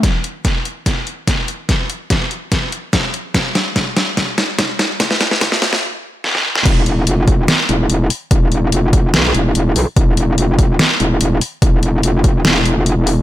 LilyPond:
<<
  \new Staff \with { instrumentName = "Wobble bass" } { \clef bass \time 4/4 \key c \major \tempo 4 = 145 r1 | r1 | r1 | r1 |
e,,4 f,,4 r8 e,,8 e,,8 r8 | e,,4 f,,4 b,,8 e,,8 e,,8 b,,16 r16 | e,,4 f,,4 r8 e,,8 e,,8 r8 | e,,4 f,,4 e,,8. f,,8 e,,8. | }
  \new DrumStaff \with { instrumentName = "Drums" } \drummode { \time 4/4 <hh bd sn>8 hh8 <hh bd sn>8 hh8 <hh bd sn>8 hh8 <hh bd sn>8 hh8 | <hh bd sn>8 hh8 <hh bd sn>8 hh8 <hh bd sn>8 hh8 <hh bd sn>8 hh8 | <hh bd sn>8 <hh sn>8 <hh bd sn>8 <hh sn>8 <hh bd sn>8 <hh sn>8 <hh bd sn>8 <hh sn>8 | <hh bd sn>16 sn16 <hh sn>16 sn16 <hh bd sn>16 sn16 <hh sn>16 sn16 r4 sn16 sn8 sn16 |
<cymc hh bd>8 hh8 hh8 <hh bd>8 <hh sn>8 hh8 hh8 hho8 | <hh bd>8 hh8 hh8 <hh bd>8 <hh sn>8 hh8 hh8 hho8 | <hh bd>8 hh8 hh8 <hh bd>8 <hh sn>8 hh8 hh8 hho8 | <hh bd>8 hh8 hh8 <hh bd>8 <hh sn>8 hh8 hh8 hho8 | }
>>